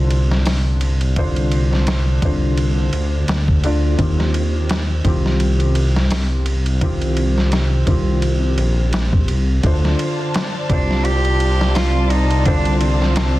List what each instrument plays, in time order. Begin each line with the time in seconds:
Already playing: detuned saw bass C2, felt piano D3 D4 F4 C5
0.10 ride
0.31 snare
0.46 snare, open hi-hat
0.81 ride
1.01 ride
1.16 felt piano D3 D4 F4 C5, kick, ride
1.36 ride
1.51 ride
1.73 snare
1.87 snare, ride
2.22 detuned saw bass C2, felt piano D3 D4 F4 C5, kick, ride
2.58 ride
2.93 detuned saw bass D2, ride
3.28 detuned saw bass D2, snare, ride
3.48 kick
3.64 felt piano D3 D4 F4 D5, ride
3.98 detuned saw bass D#2, felt piano D#3 C4 F4 G4, kick, ride
4.20 snare
4.34 ride
4.69 snare, ride
5.04 detuned saw bass C2, felt piano D#3 C4 F4 G4, kick, ride
5.26 snare
5.40 ride
5.60 ride
5.75 ride
5.96 snare
6.11 snare, open hi-hat
6.46 ride
6.66 ride
6.81 felt piano D#3 C4 F4 G4, kick, ride
7.02 ride
7.17 ride
7.38 snare
7.52 snare, ride
7.86 detuned saw bass C2, felt piano D#3 C4 F4 G4, kick, ride
8.22 ride
8.58 detuned saw bass A#1, ride
8.93 snare, ride
9.13 kick
9.28 detuned saw bass C2, ride
9.63 detuned saw bass D2, felt piano D3 D4 F4 C5, string section F4 C5 D5 A5, kick, ride
9.85 snare
9.99 ride
10.34 snare, ride
10.69 detuned saw bass C2, felt piano C3 F4 C5 D5, cello D4, kick, ride
10.91 snare
11.05 cello G4, ride
11.25 ride
11.40 ride
11.61 snare
11.75 cello F4, snare, open hi-hat
12.10 cello D#4, ride
12.30 ride
12.45 felt piano D3 D4 F4 C5, cello D4, kick, ride
12.65 ride
12.81 cello C4, ride
13.02 snare
13.16 snare, ride